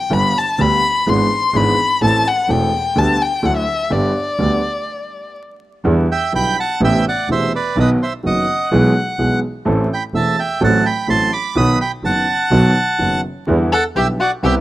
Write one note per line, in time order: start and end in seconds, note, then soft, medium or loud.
0.00 0.14 G5 medium
0.10 0.31 G1 medium
0.10 0.31 G2 medium
0.10 0.31 D3 medium
0.10 0.31 G3 medium
0.10 0.31 B3 medium
0.10 0.31 G4 medium
0.10 0.39 B5 loud
0.38 0.63 A5 medium
0.59 0.79 D2 medium
0.59 0.79 D3 medium
0.59 0.79 G3 medium
0.59 0.79 B3 medium
0.59 0.79 G4 medium
0.59 1.11 B5 loud
1.07 1.27 G#1 medium
1.07 1.27 G#2 medium
1.07 1.27 E3 medium
1.07 1.27 B3 medium
1.07 1.27 D4 medium
1.07 1.27 G#4 medium
1.07 1.58 C6 medium
1.54 1.74 G#1 loud
1.54 1.75 G#1 medium
1.54 1.75 G#2 medium
1.54 1.74 E3 medium
1.54 1.74 B3 medium
1.54 1.75 D4 medium
1.54 1.75 G#4 medium
1.54 2.03 B5 loud
2.02 2.22 A1 medium
2.02 2.22 A2 medium
2.02 2.22 E3 medium
2.02 2.22 A3 medium
2.02 2.22 C4 medium
2.02 2.22 A4 medium
2.02 2.29 A5 loud
2.28 2.53 F#5 medium
2.48 2.69 E1 medium
2.48 2.69 E2 medium
2.48 2.69 E3 medium
2.48 2.69 A3 medium
2.48 2.69 C4 medium
2.48 2.69 A4 medium
2.48 3.00 G5 medium
2.95 3.16 D2 medium
2.95 3.16 D3 medium
2.95 3.16 G3 medium
2.95 3.16 B3 medium
2.95 3.16 G4 medium
2.95 3.24 A5 medium
3.22 3.47 G5 medium
3.43 3.63 D2 medium
3.43 3.63 D3 medium
3.43 3.63 F#3 medium
3.43 3.63 A3 medium
3.43 3.63 E4 medium
3.43 3.56 F#5 medium
3.57 3.94 E5 medium
3.90 4.11 G1 medium
3.90 4.11 G2 medium
3.90 4.11 D3 medium
3.90 4.11 G3 medium
3.90 4.11 B3 medium
3.90 4.11 G4 medium
3.90 5.36 D5 medium
4.38 4.59 D2 medium
4.38 4.59 D3 medium
4.38 4.59 G3 medium
4.38 4.59 B3 medium
4.38 4.59 G4 medium
5.84 6.05 E2 medium
5.84 6.04 D3 medium
5.84 6.05 E3 medium
5.84 6.05 G3 medium
5.84 6.05 B3 medium
5.84 6.05 E4 medium
6.12 6.33 E5 medium
6.12 6.33 G5 medium
6.32 6.53 B1 medium
6.32 6.53 B2 medium
6.32 6.53 D3 soft
6.32 6.53 G3 soft
6.32 6.53 B3 soft
6.32 6.53 E4 soft
6.32 6.57 G5 medium
6.32 6.59 B5 loud
6.60 6.81 F#5 medium
6.60 6.81 A5 loud
6.80 7.01 A1 medium
6.80 7.01 A2 medium
6.80 7.01 C3 medium
6.80 7.01 A3 medium
6.80 7.01 B3 medium
6.80 7.01 E4 medium
6.84 7.05 E5 medium
6.84 7.05 G5 loud
7.09 7.29 D5 medium
7.09 7.29 F#5 medium
7.29 7.49 E1 medium
7.29 7.49 E2 medium
7.29 7.49 C3 medium
7.29 7.49 A3 soft
7.29 7.49 B3 soft
7.29 7.49 E4 medium
7.29 7.53 C5 medium
7.29 7.53 E5 medium
7.55 7.76 B4 medium
7.55 7.79 D5 medium
7.76 7.97 B1 medium
7.76 7.97 B2 medium
7.76 7.97 D#3 medium
7.76 7.97 F#3 medium
7.76 7.97 B3 medium
7.76 7.97 F#4 medium
7.76 7.90 B4 medium
7.76 7.90 D#5 medium
8.02 8.13 C5 medium
8.02 8.13 E5 medium
8.23 8.44 F#1 medium
8.23 8.45 F#1 medium
8.23 8.44 F#2 medium
8.23 8.44 D#3 soft
8.23 8.44 F#3 soft
8.23 8.44 B3 soft
8.23 8.44 F#4 medium
8.23 8.70 D#5 medium
8.23 9.40 F#5 medium
8.71 8.92 B1 medium
8.71 8.92 B1 loud
8.71 8.92 B2 medium
8.71 8.92 E3 medium
8.71 8.92 G#3 medium
8.71 8.91 B3 medium
8.71 8.91 G#4 medium
9.18 9.39 B1 medium
9.18 9.39 B2 medium
9.18 9.39 E3 soft
9.18 9.39 G#3 soft
9.18 9.39 B3 soft
9.18 9.39 G#4 medium
9.65 9.86 A1 medium
9.65 9.87 A1 medium
9.65 9.86 A2 medium
9.65 9.86 E3 medium
9.65 9.86 A3 medium
9.65 9.86 C4 medium
9.65 9.86 A4 medium
9.93 10.03 G5 medium
9.93 10.04 B5 medium
10.13 10.34 E1 medium
10.13 10.34 E2 medium
10.13 10.33 E3 soft
10.13 10.33 A3 soft
10.13 10.34 C4 soft
10.13 10.34 A4 soft
10.13 10.36 E5 medium
10.13 10.39 A5 medium
10.39 10.60 E5 medium
10.39 10.63 G5 medium
10.61 10.81 A1 medium
10.61 10.81 A1 loud
10.61 10.81 A2 medium
10.61 10.81 F#3 medium
10.61 10.81 A3 medium
10.61 10.81 C4 medium
10.61 10.81 A4 medium
10.61 10.84 F#5 medium
10.61 10.87 A5 medium
10.86 11.07 G5 medium
10.86 11.10 B5 medium
11.08 11.28 A1 medium
11.08 11.28 A2 medium
11.08 11.28 F#3 medium
11.08 11.28 A3 soft
11.08 11.28 C4 soft
11.08 11.28 A4 medium
11.08 11.31 A5 medium
11.08 11.33 C6 loud
11.33 11.55 B5 medium
11.33 11.57 D6 medium
11.55 11.76 B1 medium
11.55 11.76 B2 medium
11.55 11.76 D#3 medium
11.55 11.76 F#3 medium
11.55 11.76 B3 medium
11.55 11.76 F#4 medium
11.55 11.79 B5 medium
11.55 11.79 D#6 loud
11.81 11.92 G5 medium
11.81 11.91 B5 medium
12.03 12.23 F#1 medium
12.03 12.23 F#1 soft
12.03 12.23 F#2 soft
12.03 12.23 D#3 soft
12.03 12.23 F#3 soft
12.03 12.24 B3 soft
12.03 12.24 F#4 soft
12.03 13.21 F#5 medium
12.03 13.21 A5 medium
12.51 12.71 B1 loud
12.51 12.72 B1 medium
12.51 12.72 B2 medium
12.51 12.71 D#3 medium
12.51 12.72 F#3 medium
12.51 12.72 B3 medium
12.51 12.72 F#4 medium
12.98 13.20 F#1 medium
12.98 13.20 F#2 medium
12.98 13.19 D#3 soft
12.98 13.20 F#3 soft
12.98 13.20 B3 soft
12.98 13.20 F#4 medium
13.47 13.68 E2 medium
13.47 13.69 E2 medium
13.47 13.68 D3 medium
13.47 13.68 E3 medium
13.47 13.68 G3 medium
13.47 13.68 B3 medium
13.47 13.68 E4 medium
13.72 13.83 A4 medium
13.72 13.84 F#5 medium
13.72 13.84 A5 loud
13.95 14.16 B1 soft
13.95 14.16 B1 medium
13.95 14.16 B2 medium
13.95 14.16 D3 soft
13.95 14.15 G3 soft
13.95 14.16 B3 soft
13.95 14.16 E4 soft
13.95 14.07 G4 medium
13.95 14.08 E5 medium
13.95 14.07 G5 medium
14.20 14.31 F#4 medium
14.20 14.32 D5 medium
14.20 14.31 F#5 medium
14.43 14.61 C2 medium
14.43 14.61 C2 loud
14.43 14.61 C3 medium
14.43 14.61 G3 medium
14.43 14.61 B3 medium
14.43 14.61 E4 medium
14.43 14.54 G4 medium
14.43 14.55 E5 medium
14.43 14.55 G5 medium